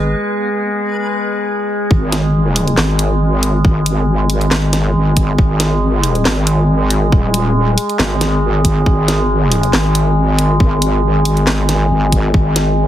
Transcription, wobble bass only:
Already playing: G#1
1.91 G#1
2.77 G#1
3.65 G#1
4.95 G#1
5.38 G#1
6.25 G#1
7.12 D#1
7.99 G#1
8.86 G#1
9.73 G#1
10.60 G#1
11.90 G#1
12.34 G#1

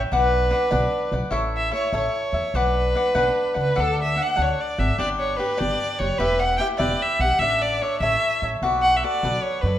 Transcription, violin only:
0.15 B4
1.57 E5
1.74 C#5
1.97 C#5
2.57 B4
3.63 B4
3.80 A4
4.02 E5
4.23 F#5
4.42 C#5
4.61 D5
4.80 E5
4.99 D5
5.20 C#5
5.37 B4
5.58 D5
5.99 C#5
6.19 B4
6.40 F#5
6.58 G5
6.78 D5
7.02 E5
7.21 F#5
7.39 E5
7.62 D5
7.82 C#5
8.01 E5
8.82 F#5
8.96 E5
9.04 D5
9.43 C#5
9.61 B4

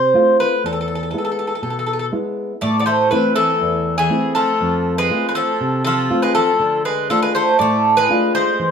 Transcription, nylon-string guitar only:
Already playing: C3
0.14 A3 C4 F4
0.64 E2
1.13 G#3 B3 E4
1.62 B2
2.12 G#3 B3 E4
2.62 A2
3.11 A3 C4 E4
3.61 E2
4.10 A3 C4 E4
4.61 F2
5.10 A3 C4 F4
5.60 C3
6.10 A3 C4 F4
6.59 D3
7.09 A3 D4 F4
7.60 A2
8.10 A3 D4 F4
8.59 E3

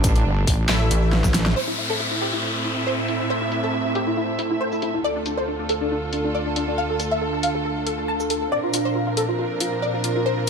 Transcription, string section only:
Already playing: E3 A3 D4
1.56 A2 A3 C4 E4 E5
5.04 D2 D3 F4 A4
8.52 A#2 F3 C4 D4 A#4

